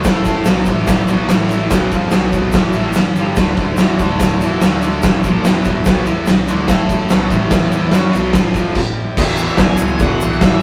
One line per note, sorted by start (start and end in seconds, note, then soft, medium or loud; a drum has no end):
0.04 0.43 A2 loud
0.04 0.47 A3 loud
0.04 kick loud
0.04 snare loud
0.04 ride loud
0.04 shaker loud
0.08 0.47 E4 loud
0.08 0.48 A4 loud
0.25 kick medium
0.25 ride medium
0.25 shaker medium
0.45 0.66 B1 medium
0.45 0.67 B2 medium
0.45 0.68 F#3 medium
0.45 snare loud
0.45 ride loud
0.45 shaker medium
0.49 0.68 B3 loud
0.65 1.06 A1 medium
0.65 1.09 A2 medium
0.65 kick medium
0.65 ride medium
0.65 shaker medium
0.69 1.09 E3 loud
0.69 1.09 A3 loud
0.87 kick loud
0.87 snare loud
0.87 ride loud
0.87 shaker loud
1.08 1.29 B1 medium
1.08 1.29 B2 medium
1.08 1.30 F#3 medium
1.08 1.30 B3 loud
1.08 ride medium
1.08 shaker medium
1.29 1.68 A1 medium
1.29 1.70 A2 medium
1.29 1.71 E3 loud
1.29 1.72 A3 medium
1.29 snare loud
1.29 ride loud
1.29 shaker loud
1.49 ride medium
1.49 shaker medium
1.71 1.90 B1 medium
1.71 1.91 B2 medium
1.71 1.92 F#3 loud
1.71 1.92 B3 loud
1.71 kick loud
1.71 snare loud
1.71 ride loud
1.71 shaker loud
1.92 2.12 F2 medium
1.92 2.12 F3 medium
1.92 2.13 C4 loud
1.92 2.13 F4 loud
1.92 kick medium
1.92 ride medium
1.92 shaker medium
2.11 2.51 B1 medium
2.11 2.54 B2 medium
2.11 2.55 F#3 medium
2.11 snare loud
2.11 ride medium
2.11 shaker medium
2.16 2.55 B3 medium
2.33 kick medium
2.33 ride medium
2.33 shaker medium
2.52 2.73 E1 medium
2.52 2.75 E2 medium
2.52 2.75 B2 loud
2.52 kick loud
2.52 snare loud
2.52 ride loud
2.52 shaker medium
2.57 2.76 E3 loud
2.72 2.94 A1 medium
2.72 ride medium
2.72 shaker medium
2.77 2.96 A2 medium
2.77 2.96 E3 medium
2.77 2.97 A3 medium
2.93 3.15 E1 medium
2.93 snare loud
2.93 ride medium
2.93 shaker medium
2.97 3.13 E2 medium
2.97 3.14 B2 medium
3.16 3.36 G1 medium
3.16 3.37 G2 medium
3.16 3.37 D3 medium
3.16 ride medium
3.16 shaker medium
3.20 3.38 G3 medium
3.36 3.76 D2 medium
3.36 3.79 D3 medium
3.36 3.79 A3 loud
3.36 kick loud
3.36 snare loud
3.36 ride medium
3.36 shaker medium
3.40 3.79 D4 loud
3.57 kick medium
3.57 ride medium
3.77 3.98 E1 medium
3.77 3.99 E2 medium
3.77 snare loud
3.77 ride loud
3.77 shaker medium
3.81 3.99 B2 loud
3.81 4.00 E3 loud
3.99 4.38 D2 medium
3.99 4.40 D3 medium
3.99 4.41 A3 medium
3.99 4.41 D4 loud
3.99 kick medium
3.99 ride medium
3.99 shaker medium
4.20 kick loud
4.20 snare loud
4.20 ride loud
4.20 shaker medium
4.41 4.60 E1 medium
4.41 4.61 E2 medium
4.41 4.62 B2 loud
4.41 4.62 E3 loud
4.41 ride medium
4.41 shaker medium
4.61 5.01 D2 medium
4.61 5.03 D3 loud
4.61 5.04 A3 medium
4.61 5.04 D4 medium
4.61 snare loud
4.61 ride medium
4.61 shaker medium
4.82 ride medium
4.82 shaker medium
5.02 5.23 E1 medium
5.02 5.24 E2 medium
5.02 5.24 B2 loud
5.02 5.25 E3 loud
5.02 kick loud
5.02 snare loud
5.02 ride loud
5.02 shaker medium
5.24 5.44 A#1 medium
5.24 5.44 A#2 medium
5.24 5.45 F3 loud
5.24 5.45 A#3 loud
5.24 kick medium
5.24 ride medium
5.24 shaker medium
5.45 5.83 E1 medium
5.45 5.85 E2 medium
5.45 5.85 B2 medium
5.45 5.86 E3 medium
5.45 snare loud
5.45 ride loud
5.45 shaker medium
5.64 kick medium
5.64 ride medium
5.64 shaker medium
5.85 6.05 B1 medium
5.85 6.05 B2 loud
5.85 6.06 F#3 loud
5.85 6.05 B3 loud
5.85 kick loud
5.85 snare loud
5.85 ride medium
5.85 shaker medium
6.06 6.26 E2 loud
6.06 6.26 E3 medium
6.06 6.27 B3 medium
6.06 6.27 E4 loud
6.06 ride medium
6.06 shaker medium
6.26 6.47 B1 medium
6.26 6.44 B2 medium
6.26 6.44 F#3 medium
6.26 snare loud
6.26 ride medium
6.26 shaker medium
6.48 6.68 D2 medium
6.48 6.68 D3 medium
6.48 6.68 A3 medium
6.48 6.69 D4 loud
6.48 ride medium
6.48 shaker medium
6.68 7.07 A2 loud
6.68 7.10 A3 loud
6.68 7.10 E4 medium
6.68 7.11 A4 loud
6.68 kick loud
6.68 snare loud
6.68 ride medium
6.68 shaker medium
6.89 kick medium
6.89 ride medium
6.89 shaker medium
7.09 7.30 B1 medium
7.09 7.29 B2 medium
7.09 7.30 F#3 medium
7.09 7.31 B3 loud
7.09 snare loud
7.09 ride loud
7.09 shaker medium
7.30 7.50 A1 loud
7.30 7.51 A2 medium
7.30 7.50 E3 loud
7.30 7.51 A3 loud
7.30 kick medium
7.30 ride medium
7.30 shaker medium
7.51 7.90 E2 medium
7.51 7.93 E3 loud
7.51 7.93 B3 loud
7.51 7.94 E4 loud
7.51 kick loud
7.51 snare loud
7.51 ride loud
7.51 shaker medium
7.72 ride medium
7.72 shaker medium
7.91 8.12 F#2 medium
7.91 8.14 F#3 medium
7.91 8.14 C#4 medium
7.91 8.14 F#4 medium
7.91 snare loud
7.91 ride medium
7.91 shaker medium
8.13 8.33 B1 medium
8.13 8.34 B2 medium
8.13 8.35 F#3 loud
8.13 8.35 B3 loud
8.13 ride medium
8.13 shaker medium
8.33 8.73 F2 medium
8.33 8.76 F3 loud
8.33 8.76 C4 loud
8.33 8.76 F4 loud
8.33 kick loud
8.33 snare loud
8.33 ride loud
8.33 shaker medium
8.54 kick medium
8.54 ride medium
8.54 shaker medium
8.75 kick loud
8.75 crash loud
9.17 9.47 E1 medium
9.17 9.58 E2 loud
9.17 9.60 B2 loud
9.17 9.56 E5 loud
9.17 kick loud
9.17 crash loud
9.17 crash medium
9.17 shaker medium
9.21 9.62 E3 loud
9.37 shaker medium
9.48 shaker soft
9.57 9.74 B1 medium
9.57 9.99 E2 medium
9.57 10.01 B2 medium
9.57 10.02 G#5 loud
9.57 kick loud
9.57 snare loud
9.57 crash medium
9.57 shaker medium
9.63 10.03 E3 medium
9.77 9.95 C#2 medium
9.77 shaker medium
9.87 shaker soft
9.99 10.15 C#2 loud
9.99 10.41 E2 medium
9.99 10.24 B2 loud
9.99 10.44 F#5 loud
9.99 kick loud
9.99 crash medium
9.99 shaker medium
10.04 10.20 E3 loud
10.21 10.37 B1 medium
10.21 10.45 E3 medium
10.21 shaker medium
10.25 10.43 B2 medium
10.32 shaker soft
10.41 10.62 G#1 loud
10.41 10.62 E2 medium
10.41 10.62 B2 medium
10.41 10.62 E5 loud
10.41 kick loud
10.41 snare loud
10.41 crash medium
10.41 shaker medium
10.46 10.61 E3 medium